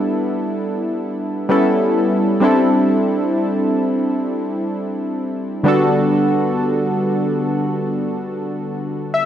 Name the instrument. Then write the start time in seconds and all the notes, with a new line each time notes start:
synth keys
Already playing: G3 B3 D4 E4 A4
1.49 G3 B3 C#4 E4 A4
2.40 G3 C4 D4 E4
2.45 A4
5.63 D3 G3 B3 D4 F#4
5.68 A4
9.14 E5